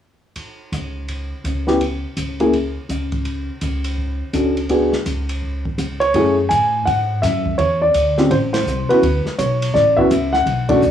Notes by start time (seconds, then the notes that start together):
0.36 kick, ride
0.72 C#2, kick, hi-hat pedal, ride
1.08 kick, ride
1.44 C#2, kick, hi-hat pedal, ride
1.67 B3 C#4 E4 G4, snare
1.81 kick, ride
2.17 C#2, kick, hi-hat pedal, ride
2.40 A#3 C#4 E4 G#4, ride
2.53 kick, ride
2.89 C#2, kick, hi-hat pedal, ride
3.12 kick, ride
3.25 kick, ride
3.61 C#2, kick, hi-hat pedal, ride
3.84 ride
3.98 kick
4.33 C#2 C#4 D4 F#4 A4, kick, hi-hat pedal, ride
4.57 ride
4.69 B3 D4 F#4 G#4, kick, ride
4.93 snare
5.06 C#2, kick, hi-hat pedal, ride
5.29 ride
5.42 kick
5.65 kick
5.78 C#2, kick, hi-hat pedal, ride
6.00 C#5, ride
6.14 F#2 A3 C#4 E4 G#4, kick, ride
6.49 A2 G#5, kick, hi-hat pedal, ride
6.85 G#2 F#5, kick, ride
7.22 F#2 E5, kick, snare, hi-hat pedal, ride
7.46 kick
7.58 E2 C#5, kick, ride
7.82 D5
7.94 D2, kick, hi-hat pedal, ride
8.18 C4 C#4 F4 G4, snare
8.30 A1 C5, kick, ride
8.53 C5, snare, ride
8.66 C2, hi-hat pedal
8.88 B3 C#4 E4 F#4 B4, muted upright bass stroke, ride
9.02 D2, kick, ride
9.25 muted upright bass stroke, snare
9.38 B1 C#5, kick, hi-hat pedal, ride
9.62 ride
9.74 A1 D5, kick, snare
9.97 B3 C#4 E4 F#4 E5, kick
10.10 C#2, kick, hi-hat pedal, ride
10.33 F#5, snare
10.46 B1, kick, ride
10.69 A3 C#4 D4 F#4 D5, kick, ride
10.81 D2, hi-hat pedal